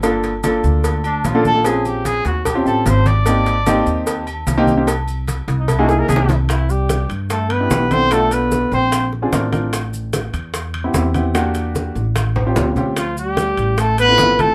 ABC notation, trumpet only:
X:1
M:4/4
L:1/16
Q:1/4=148
K:Cmix
V:1 name="Trumpet"
z8 z2 D2 F2 A2 | _A2 G2 A2 _G2 =G2 =A2 c2 d2- | d8 z8 | z6 z ^D E _G ^G B G3 z |
[K:C] E2 G4 z2 A2 B4 c2 | A2 B4 c4 z6 | z16 | z16 |
F2 G6 A2 B4 A2 |]